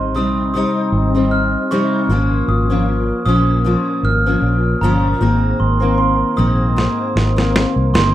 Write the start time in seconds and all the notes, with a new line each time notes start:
Already playing: G#1 G3 C4 D#4 C6
0.14 A#1 C3 G3 C4 D#4 D#6
0.54 C3 G3 C4 D#4 D#6
0.92 G#1
1.15 G3 C4 D#4
1.31 F6
1.71 C3 G3 C4 D#4 C#6
2.09 G#1 A#2 F3 A#3 C#4
2.48 G#1 D#6
2.70 F3 A#3 C#4
3.26 A#1 A#2 F3 A#3 C#4 D#6
3.65 A#2 F3 A#3 C#4
4.03 G#1 F6
4.26 F3 A#3 C#4
4.42 A#1
4.81 G1 A#2 F3 A#3 C#4 A#5
5.21 G#1 G#2 D#3 A#3 C4
5.60 G#1 C6
5.80 D#3 A#3 C4
5.98 C6
6.36 A#1 G#2 D#3 A#3 C4 D#6
6.76 G#2 D#3 A#3 C4, snare
7.16 G#1, snare
7.36 D#3 A#3 C4, snare
7.56 snare
7.76 C2
7.93 G1 D#3 A#3 C4 C6, snare